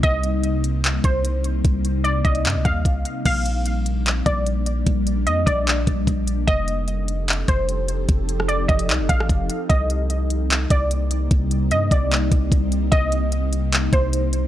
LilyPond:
<<
  \new Staff \with { instrumentName = "Synth pluck" } { \time 4/4 \key c \dorian \tempo 4 = 149 ees''2~ ees''8 c''4. | r4 d''8 ees''4 f''8 r4 | f''2~ f''8 d''4. | r4 ees''8 d''8 r2 |
ees''2~ ees''8 c''4. | r4 d''8 ees''4 f''8 r4 | ees''2~ ees''8 d''4. | r4 ees''8 d''8 r2 |
ees''2~ ees''8 c''4. | }
  \new Staff \with { instrumentName = "Ambient pad" } { \time 4/4 \key c \dorian <c g bes c' ees'>1~ | <c g bes c' ees'>1 | <g bes d'>1~ | <g bes d'>1 |
<f c' ees' g' a'>1~ | <f c' ees' g' a'>1 | <c g bes c'>1~ | <c g bes c'>1~ |
<c g bes c'>1 | }
  \new Staff \with { instrumentName = "808-style bass" } { \clef bass \time 4/4 \key c \dorian c,2~ c,8 c,4. | c,4. c,8 g,16 c,16 ees,8 c,8 r8 | bes,,2~ bes,,8 bes,,4. | bes,,4 f,8 bes,,4 bes,,8 bes,,4 |
f,,2~ f,,8 f,,4. | f,,4. f,,8 c,16 f,,16 a,,8 f,,8 r8 | c,2~ c,8 c,4. | c,4 g,8 c,4 c,8 c,4 |
c,2~ c,8 c,4. | }
  \new DrumStaff \with { instrumentName = "Drums" } \drummode { \time 4/4 <hh bd>8 hh8 hh8 hh8 <hc hh>8 <hh bd>8 hh8 hh8 | <hh bd>8 hh8 hh8 <hh bd>16 hh16 <hc hh>8 <hh bd>8 <hh bd>8 hh8 | <cymc hh bd>8 hh8 hh8 hh8 <hc hh>8 <hh bd>8 hh8 hh8 | <hh bd>8 hh8 hh8 <hh bd>8 <hc hh>8 <hh bd>8 <hh bd>8 hh8 |
<hh bd>8 hh8 hh8 hh8 <hc hh>8 <hh bd>8 hh8 hh8 | <hh bd>8 hh16 ss16 hh8 <hh bd>16 hh16 <hc hh>8 <hh bd>16 ss16 <hh bd>8 hh8 | <hh bd>8 hh8 hh8 hh8 <hc hh>8 <hh bd>8 hh8 hh8 | <hh bd>8 hh8 hh8 <hh bd>8 <hc hh>8 <hh bd>8 <hh bd>8 hh8 |
<hh bd>8 hh8 hh8 hh8 <hc hh>8 <hh bd>8 hh8 hh8 | }
>>